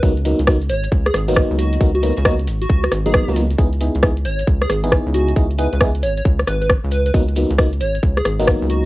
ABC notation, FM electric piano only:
X:1
M:4/4
L:1/16
Q:"Swing 16ths" 1/4=135
K:C#dor
V:1 name="FM electric piano"
[F,A,B,D] z [F,A,B,D] z [F,A,B,D] z6 [F,A,B,D]4- [F,A,B,D] | [F,A,B,D] z [F,A,B,D] z [F,A,B,D] z6 [F,A,B,D]2 [F,A,B,D] [F,A,B,D] z | [B,DEG] z [B,DEG] z [B,DEG] z6 [B,DEG]4- [B,DEG] | [B,DEG] z [B,DEG] z [B,DEG] z8 z3 |
[F,A,B,D] z [F,A,B,D] z [F,A,B,D] z6 [F,A,B,D]4- [F,A,B,D] |]